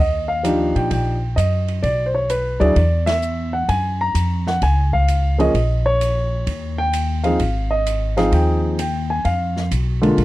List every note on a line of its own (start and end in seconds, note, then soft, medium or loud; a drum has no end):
0.00 0.72 D#2 medium
0.00 0.30 D#5 medium
0.28 0.76 F5 medium
0.43 1.15 F3 medium
0.43 1.16 D4 soft
0.43 1.16 D#4 soft
0.43 1.16 G4 medium
0.43 hi-hat pedal soft
0.43 ride medium
0.76 0.90 A#2 medium
0.76 0.89 G5 medium
0.76 ride soft
0.91 1.34 A#1 medium
0.91 1.34 G5 medium
0.91 kick soft
0.91 ride medium
1.36 1.80 F#2 medium
1.36 1.80 D#5 medium
1.36 hi-hat pedal soft
1.36 ride medium
1.68 ride soft
1.83 2.57 B1 medium
1.83 2.05 D5 medium
1.83 kick soft
1.83 ride soft
2.06 2.14 C5 medium
2.15 2.29 C#5 medium
2.30 2.62 B4 medium
2.30 hi-hat pedal soft
2.30 ride soft
2.60 2.75 D2 medium
2.60 2.74 F#3 medium
2.60 2.74 D4 medium
2.60 2.74 E4 medium
2.60 2.74 G#4 medium
2.60 3.04 D5 medium
2.60 ride soft
2.76 3.65 E2 medium
2.76 kick soft
2.76 ride medium
3.06 3.55 E5 medium
3.06 snare medium
3.06 ride medium
3.22 hi-hat pedal soft
3.53 3.67 F#5 medium
3.68 4.12 F#2 medium
3.68 3.98 G#5 medium
3.68 kick soft
3.68 ride soft
4.01 4.48 A#5 medium
4.14 4.58 F2 medium
4.14 hi-hat pedal soft
4.14 ride medium
4.47 4.62 F#5 medium
4.47 snare soft
4.62 5.50 C#2 medium
4.62 4.91 G#5 medium
4.62 kick soft
4.62 ride soft
4.93 5.36 F5 medium
4.93 kick soft
5.08 hi-hat pedal soft
5.08 ride medium
5.38 5.52 F3 medium
5.38 5.52 A#3 medium
5.38 5.53 C#4 medium
5.38 5.53 G#4 medium
5.38 5.83 D#5 medium
5.38 ride soft
5.54 6.43 A#1 medium
5.54 kick soft
5.54 ride soft
5.86 6.81 C#5 medium
6.01 hi-hat pedal medium
6.01 ride medium
6.47 7.35 D#2 medium
6.47 kick soft
6.47 ride medium
6.78 7.21 G5 medium
6.93 hi-hat pedal soft
6.93 ride medium
7.24 7.38 F3 soft
7.24 7.38 C4 soft
7.24 7.38 D#4 soft
7.24 7.38 G#4 medium
7.24 7.72 F5 medium
7.24 ride soft
7.39 8.28 G#1 medium
7.39 kick soft
7.39 ride soft
7.71 8.18 D#5 medium
7.86 hi-hat pedal medium
7.86 ride medium
8.17 8.75 F3 medium
8.17 8.75 C4 medium
8.17 8.76 D#4 medium
8.17 8.76 G#4 medium
8.17 8.33 F5 medium
8.17 snare soft
8.17 ride soft
8.32 9.21 D#2 medium
8.32 8.76 G5 medium
8.32 kick soft
8.32 ride medium
8.79 9.11 G5 medium
8.79 hi-hat pedal soft
8.79 ride medium
9.10 9.25 G#5 medium
9.25 9.68 F2 medium
9.25 9.68 F5 medium
9.25 kick soft
9.25 ride soft
9.56 snare soft
9.71 10.14 B1 medium
9.71 hi-hat pedal soft
9.71 ride medium
10.02 10.25 D3 medium
10.02 10.25 G#3 medium
10.02 10.25 A#3 medium
10.02 10.25 F4 medium
10.02 ride soft
10.17 10.25 A#1 medium
10.17 kick soft
10.17 ride medium